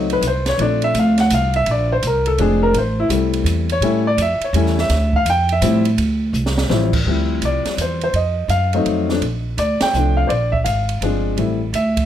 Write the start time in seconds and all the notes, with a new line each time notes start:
Already playing: C#2 F#3 A3 C4 D#4
0.10 B4, ride
0.21 C2, hi-hat pedal, ride
0.27 C5
0.46 C#5, snare, ride
0.58 A#1 F3 A3 C4 D4 D5, ride
0.82 E5, ride
0.94 D2, hi-hat pedal, ride
0.99 F5
1.18 F#5, snare, ride
1.30 C2 F5, hi-hat pedal, ride
1.54 E5, ride
1.66 A#1, ride
1.71 D5
1.92 C5
2.02 C2, hi-hat pedal, ride
2.07 A#4
2.26 A4, ride
2.38 F1 F3 G#3 C4 D4 G#4, ride
2.63 A#4
2.73 A1, ride
2.78 C5
3.00 E4
3.09 C2 G3 A3 C4 E4, hi-hat pedal, ride
3.33 ride
3.44 E2, hi-hat pedal, ride
3.69 C#5, ride
3.80 A2 G3 A3 C#4 E4, ride
4.07 D5
4.17 F2, hi-hat pedal, ride
4.22 E5
4.40 muted upright bass stroke, ride
4.44 C#5
4.53 E2 G3 A3 C#4 E4, ride
4.66 snare
4.78 E5, snare
4.89 D2, snare, ride
5.13 F5, kick
5.25 F2, hi-hat pedal, ride
5.30 G5
5.49 E5, ride
5.61 A2 F3 G3 C4 E4, hi-hat pedal, ride
5.85 ride
5.97 D2, ride
6.33 C2, hi-hat pedal
6.46 snare
6.58 snare
6.69 A1 F3 G3 C4 E4, snare
6.93 kick, crash
7.05 D2 F3 G3 C4 E4
7.41 C2 D5, hi-hat pedal, ride
7.65 muted upright bass stroke, snare, ride
7.77 E2, hi-hat pedal, ride
7.81 C5
8.01 C5, ride
8.13 F2 D#5, ride
8.48 F#2 F5, hi-hat pedal, ride
8.73 F#3 A3 C4 D#4, ride
8.85 F2, ride
9.09 F3 A3 C4 D4, snare
9.20 A#1, ride
9.57 D2 D5, hi-hat pedal, ride
9.81 G5, muted upright bass stroke, snare, ride
9.93 C2 F3 A3 C4 D4, hi-hat pedal
10.17 F5
10.27 A#1 C5 D5, ride
10.52 E5, kick
10.64 G#1 F5, hi-hat pedal, ride
10.89 ride
11.01 G1 F3 G#3 C4 D4, ride
11.37 A1 G3 A3 C4 E4, ride
11.73 D2 E5, hi-hat pedal, ride
11.97 kick, ride